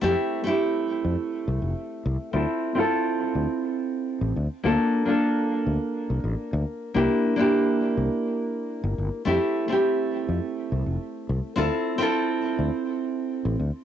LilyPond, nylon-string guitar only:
\new Staff \with { instrumentName = "Nylon-string guitar" } { \time 4/4 \key d \minor \tempo 4 = 104 <a c' e' g'>8. <a c' e' g'>2.~ <a c' e' g'>16 | <c' e' f' a'>8. <c' e' f' a'>2~ <c' e' f' a'>8. r8 | <bes d' f' a'>8. <bes d' f' a'>2.~ <bes d' f' a'>16 | <bes d' e' g'>8. <bes d' e' g'>2.~ <bes d' e' g'>16 |
<a c' e' g'>8. <a c' e' g'>2.~ <a c' e' g'>16 | <c' e' f' a'>8. <c' e' f' a'>2~ <c' e' f' a'>8. r8 | }